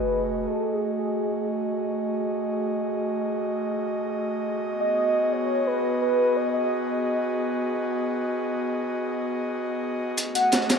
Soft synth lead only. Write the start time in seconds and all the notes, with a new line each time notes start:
Already playing: B4
0.47 A4
0.73 G#4
0.99 G#4
4.80 D#5
5.32 C#5
5.67 B4
6.02 B4
6.36 D#5
6.53 D#5
10.35 F#5